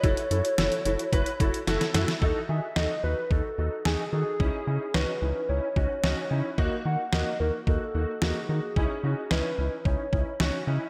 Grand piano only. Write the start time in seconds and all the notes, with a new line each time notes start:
0.03 E4 F#4 A4
0.31 E4 F#4 A4
0.58 E4 F#4 A4
0.85 E4 F#4 A4
1.13 E4 F#4 B4
1.40 E4 F#4 A4
1.67 E4 F#4 A4
1.94 E4 F#4 A4
2.22 D#4 F#4 A4
2.49 D#4 F#4 G#4
2.76 D#4 F#4 A4
3.04 D#4 F#4 B4
3.31 D#4 F#4 A4
3.58 D#4 F#4 A4
3.85 D#4 F#4 G#4
4.13 D#4 F#4 A4
4.40 C#4 D#4 E4
4.67 C#4 D#4 E4
4.94 C#4 D#4 F#4
5.22 C#4 D#4 E4
5.49 C#4 D#4 E4
5.76 C#4 D#4 F#4
6.03 C#4 D#4 F#4
6.31 C#4 D#4 E4
6.58 A#3 D#4 F#4
6.85 A#3 D#4 F#4
7.13 A#3 D#4 F#4
7.40 A#3 D#4 F#4
7.67 A#3 D#4 F#4
7.95 A#3 D#4 F#4
8.22 A#3 D#4 F#4
8.49 A#3 D#4 F#4
8.77 C#4 D#4 E4
9.04 C#4 D#4 F#4
9.31 C#4 D#4 E4
9.58 C#4 D#4 E4
9.85 C#4 D#4 E4
10.13 C#4 D#4 E4
10.40 C#4 D#4 F#4
10.67 C#4 D#4 E4